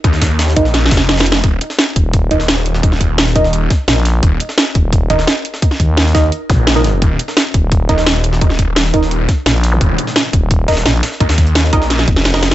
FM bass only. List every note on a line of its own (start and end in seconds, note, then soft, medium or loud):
1.96 2.30 D#1 loud
3.88 4.21 A#1 loud
4.75 5.09 D#1 loud
5.80 6.31 D#2 medium
6.50 7.01 A#1 medium
7.54 7.88 D#1 loud
9.46 9.80 A#1 loud
10.33 10.67 D#1 loud
10.68 10.84 D#1 loud
10.86 11.02 A#1 loud
12.08 12.55 F1 loud